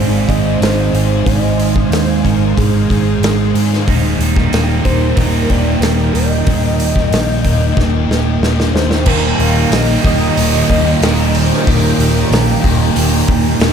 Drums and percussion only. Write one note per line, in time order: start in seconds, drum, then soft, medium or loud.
0.29 kick medium
0.29 open hi-hat medium
0.62 snare medium
0.62 open hi-hat medium
0.95 open hi-hat soft
1.26 kick loud
1.26 open hi-hat medium
1.60 open hi-hat medium
1.76 kick medium
1.92 snare loud
1.92 open hi-hat medium
2.25 kick medium
2.25 open hi-hat medium
2.58 kick loud
2.58 open hi-hat medium
2.90 kick medium
2.90 open hi-hat medium
3.23 snare loud
3.23 open hi-hat medium
3.55 open hi-hat medium
3.73 snare soft
3.88 kick loud
3.88 open hi-hat medium
4.21 open hi-hat medium
4.36 kick loud
4.36 snare soft
4.53 snare loud
4.53 open hi-hat medium
4.85 kick medium
4.85 open hi-hat medium
5.17 kick loud
5.17 open hi-hat medium
5.50 kick medium
5.50 open hi-hat medium
5.82 snare loud
5.82 open hi-hat medium
6.15 open hi-hat medium
6.47 kick loud
6.47 open hi-hat medium
6.80 open hi-hat medium
6.96 kick medium
6.96 snare soft
7.13 snare medium
7.13 open hi-hat medium
7.45 kick medium
7.45 open hi-hat medium
7.77 kick loud
7.77 snare medium
8.11 snare medium
8.43 snare medium
8.60 snare medium
8.76 snare medium
8.91 snare medium
9.06 kick loud
9.06 crash loud
9.40 open hi-hat medium
9.72 snare loud
9.72 open hi-hat medium
10.05 kick loud
10.05 open hi-hat medium
10.37 open hi-hat medium
10.70 kick loud
10.70 open hi-hat medium
11.02 snare loud
11.02 open hi-hat medium
11.35 open hi-hat medium
11.53 snare soft
11.67 kick loud
11.67 open hi-hat medium
12.00 open hi-hat medium
12.32 snare loud
12.32 open hi-hat medium
12.64 kick loud
12.64 open hi-hat medium
12.96 open hi-hat medium
13.28 kick medium
13.28 open hi-hat medium
13.60 snare loud
13.60 open hi-hat medium